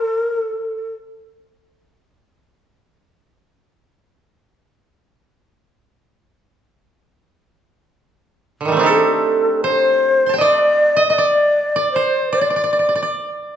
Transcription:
0.00 1.21 A4 soft
0.00 0.21 A4 medium
0.00 0.04 A#4 medium
0.00 0.83 C5 medium
0.21 0.36 A#4 medium
0.36 0.92 A4 medium
8.61 8.83 D3 soft
8.65 8.85 D#3 soft
8.65 8.92 G3 soft
8.72 11.60 A3 soft
8.77 11.37 C4 soft
8.77 10.44 D4 soft
8.81 10.47 D#4 soft
8.81 10.87 G4 soft
8.86 10.76 A4 soft
8.86 9.61 A4 medium
9.63 10.35 C5 medium
9.63 11.35 C5 medium
10.26 11.55 A5 soft
10.26 11.39 C6 soft
10.34 11.68 G5 soft
10.38 11.04 D5 medium
10.38 11.03 D5 medium
10.38 10.96 D#5 soft
10.97 11.09 D#5 medium
11.09 11.15 D#5 medium
11.09 11.24 D#5 soft
11.14 11.92 D5 medium
11.18 11.75 D5 medium
11.76 12.32 D5 medium
11.92 12.29 C5 medium
11.92 13.56 C5 soft
12.32 13.09 D5 medium
12.32 12.41 D5 soft
12.41 12.50 D5 soft
12.50 12.56 D5 soft
12.56 12.63 D5 soft
12.64 12.72 D5 soft
12.73 12.79 D5 soft
12.79 12.88 D5 soft
12.89 12.95 D5 soft
12.95 13.02 D5 soft
13.02 13.56 D5 soft

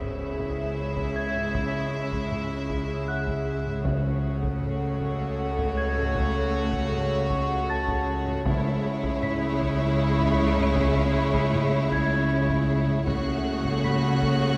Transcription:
0.00 3.81 C#2 medium
0.00 0.35 C#3 medium
0.00 3.81 C#3 soft
0.00 3.81 G#3 medium
0.00 3.82 E4 medium
0.00 3.82 G#4 medium
0.00 3.82 C#5 medium
0.00 3.81 E5 medium
0.00 1.50 B6 soft
0.00 taiko low-mid soft
0.00 impact medium
0.40 taiko medium
0.97 taiko medium
1.16 3.43 G#6 soft
1.36 taiko low-mid soft
1.55 taiko medium
2.12 taiko medium
2.32 taiko low-mid medium
2.70 taiko medium
3.08 5.35 F#5 soft
3.08 5.35 F#6 soft
3.27 taiko medium
3.66 taiko low-mid soft
3.84 8.42 C#2 medium
3.84 4.96 C#3 medium
3.84 8.43 C#3 medium
3.84 8.43 A3 medium
3.84 8.43 F#4 medium
3.84 8.47 A4 medium
3.84 8.42 C#5 medium
3.84 8.43 C#5 medium
3.84 8.46 F#5 medium
3.84 taiko medium
4.43 taiko medium
4.62 taiko low-mid medium
5.01 taiko medium
5.59 taiko medium
5.77 8.04 G#6 soft
5.97 taiko low-mid soft
6.16 taiko loud
6.73 taiko medium
6.92 taiko low-mid medium
7.30 taiko medium
7.70 9.97 A5 soft
7.70 9.96 A6 medium
7.88 taiko medium
8.27 taiko low-mid soft
8.46 13.04 C#2 medium
8.46 9.58 C#3 medium
8.46 13.04 C#3 medium
8.46 13.04 G#3 medium
8.46 13.04 E4 medium
8.46 13.09 E4 medium
8.46 13.04 C#5 medium
8.46 13.05 C#5 medium
8.46 13.09 E5 medium
8.46 taiko loud
9.04 taiko medium
9.22 11.50 B6 medium
9.22 taiko low-mid medium
9.61 taiko medium
10.19 taiko medium
10.58 taiko low-mid soft
10.76 taiko loud
11.34 taiko medium
11.53 taiko low-mid medium
11.92 14.19 G#6 soft
11.92 taiko medium
12.50 taiko medium
12.88 taiko low-mid soft
13.07 14.57 C#2 medium
13.07 13.14 C#3 soft
13.07 14.57 C#3 medium
13.07 14.57 A3 medium
13.07 14.57 F#4 medium
13.07 14.57 A4 medium
13.07 14.57 C#5 medium
13.07 14.57 F#5 medium
13.07 14.57 C#6 medium
13.07 14.57 F#6 medium
13.07 taiko loud
13.15 13.21 C#3 soft
13.23 13.29 C#3 soft
13.30 13.36 C#3 soft
13.37 13.44 C#3 soft
13.53 13.59 C#3 soft
13.60 13.66 C#3 soft
13.65 13.74 C#3 soft
13.65 taiko medium
13.76 13.81 C#3 soft
13.82 13.89 C#3 soft
13.82 14.57 B5 soft
13.82 14.57 B6 soft
13.82 taiko low-mid medium
13.90 13.97 C#3 soft
13.98 14.04 C#3 soft
14.06 14.12 C#3 soft
14.13 14.19 C#3 soft
14.23 taiko medium
14.28 14.34 C#3 soft
14.35 14.41 C#3 soft
14.42 14.49 C#3 soft
14.50 14.56 C#3 soft

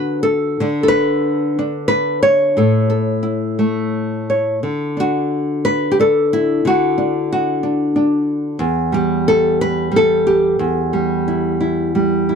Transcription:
0.00 0.59 D3 medium
0.00 0.57 F#4 medium
0.00 0.22 B4 medium
0.23 0.82 A4 medium
0.60 2.57 D3 medium
0.60 1.57 D4 medium
0.83 1.57 A4 medium
0.88 1.87 B4 loud
1.59 2.54 D4 medium
1.88 2.22 B4 medium
2.23 4.28 C#5 medium
2.57 4.62 A2 medium
2.57 2.88 A4 medium
2.90 4.58 A4 soft
3.23 4.58 E4 soft
3.59 4.59 A3 medium
4.30 4.59 C#5 soft
4.63 6.64 D3 medium
4.97 5.98 D4 soft
4.97 5.91 F#4 medium
5.65 6.32 B4 medium
5.91 5.98 G4 medium
5.99 6.61 D4 medium
5.99 6.66 A4 medium
6.33 7.31 E4 medium
6.65 8.60 D3 medium
6.65 7.31 F#4 medium
6.98 7.62 D4 medium
7.33 8.61 F#4 medium
7.63 7.95 D4 soft
7.96 8.56 D4 medium
8.59 10.58 E2 medium
8.92 9.90 G3 medium
8.92 9.93 G4 medium
9.28 9.60 A4 medium
9.61 9.93 B4 loud
9.91 10.54 G3 medium
9.96 10.94 A4 medium
10.27 12.35 G4 medium
10.59 12.35 E2 medium
10.93 11.94 G3 medium
11.28 11.59 E4 soft
11.60 12.28 E4 soft
11.95 12.35 G3 medium
12.29 12.35 E4 soft

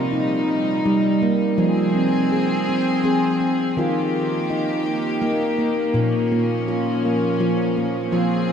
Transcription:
0.00 0.85 C3 medium
0.00 1.56 C3 medium
0.00 1.56 G3 medium
0.00 1.56 D#4 medium
0.00 0.13 F4 medium
0.12 0.84 D#4 medium
0.85 1.48 G3 medium
0.85 1.22 D#4 medium
1.22 1.58 A#3 medium
1.57 3.74 F3 medium
1.57 3.04 F3 medium
1.57 3.74 C4 medium
1.57 3.74 G#4 medium
1.95 2.31 C4 medium
2.32 2.68 G#4 medium
2.69 3.03 C4 medium
3.04 3.39 C4 medium
3.04 3.41 G#4 medium
3.40 3.77 C4 medium
3.76 5.93 D#3 medium
3.76 5.22 D#3 medium
3.76 8.08 A#3 medium
3.76 4.50 F4 medium
3.76 5.92 G4 medium
4.50 5.22 D#4 medium
5.22 5.57 A#3 medium
5.22 5.59 D#4 medium
5.59 5.95 A#3 medium
5.94 7.40 A#2 loud
5.94 8.52 F3 medium
5.94 8.10 C#4 medium
6.32 6.68 A#3 medium
6.68 7.04 F4 medium
7.05 7.41 A#3 medium
7.40 8.02 F3 medium
7.40 7.76 F4 medium
7.77 8.13 A#3 medium
8.12 8.52 F3 medium
8.12 8.52 C4 medium
8.12 8.52 F4 medium
8.12 8.52 G#4 medium

